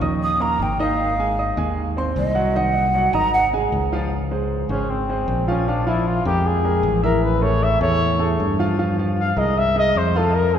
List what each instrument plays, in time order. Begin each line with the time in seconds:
0.01 fingered electric bass D#2, grand piano D#4 D#5 D#6
0.22 flute D#6
0.40 grand piano A#3 A#4 A#5, flute A#5
0.59 fingered electric bass G#1, flute G5
0.79 grand piano D#3 D#4 D#5, flute F5
1.19 grand piano G#3 G#4 G#5
1.38 grand piano D#4 D#5 D#6
1.57 fingered electric bass D#2, grand piano G#3 G#4 G#5
1.97 grand piano C4 C5 C6
2.16 fingered electric bass C2, flute D#5
2.35 grand piano F#3 F#4 F#5
2.55 grand piano D#3 D#4 D#5, flute F#5
2.95 grand piano F#3 F#4 F#5
3.13 fingered electric bass G#1, grand piano D#4 D#5 D#6, flute A#5
3.33 flute F#5
3.53 grand piano G#3 G#4 G#5
3.72 fingered electric bass C#2
3.92 grand piano F3 F4 F5
4.31 grand piano G#3 G#4 C5
4.69 fingered electric bass G#1, grand piano G#3 G#4 C5, trumpet C#4
4.90 trumpet C4
5.09 grand piano G#3 G#4 C5
5.28 fingered electric bass A#1
5.47 grand piano F3 F4 F5, trumpet C#4
5.68 grand piano F3 F4 F5, trumpet D4
5.87 grand piano F3 F4 F5, trumpet E4
6.07 trumpet F4
6.25 fingered electric bass F2, grand piano G#3 G#4 A#4, trumpet G4
6.46 trumpet G#4
6.65 grand piano G#3 G#4 A#4
6.83 fingered electric bass A1
7.03 grand piano E3 E4 E5, trumpet A#4
7.23 trumpet B4
7.41 grand piano A3 G#4 A4, trumpet C#5
7.63 trumpet E5
7.80 fingered electric bass E2, grand piano A3 G#4 A4, trumpet C#5
8.19 grand piano A3 G#4 A4
8.40 fingered electric bass G2
8.59 grand piano F3 F4 F5
8.78 grand piano F3 F4 F5
8.98 grand piano F3 F4 F5
9.19 trumpet F5
9.36 fingered electric bass C2, grand piano G#3 G#4 A#4, trumpet D#5
9.58 trumpet E5
9.76 grand piano G#3 G#4 A#4, trumpet D#5
9.95 fingered electric bass F2, trumpet C5
10.15 grand piano F3 F4 F5, trumpet A4
10.35 trumpet A#4
10.54 grand piano G#3 G#4 C5, trumpet G#4